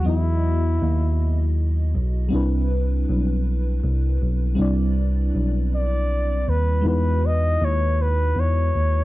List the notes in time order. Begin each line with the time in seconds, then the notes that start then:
0.03 F#3 B3 D#5
0.07 E2 E4 F#4
0.82 D#2
1.95 B1
2.29 G3 C4 D4
2.33 C2 E4 B4
3.09 B1
3.83 C2
4.21 B1
4.55 C2 G3 C4 D4
4.60 E4 D5
5.35 B1
5.75 D5
6.48 D#2 B4
6.81 E2 G#3 D#4 E4
6.86 F#4 B4
7.26 D#5
7.61 D#2 C#5
8.02 B4
8.36 E2 C#5
8.74 D#2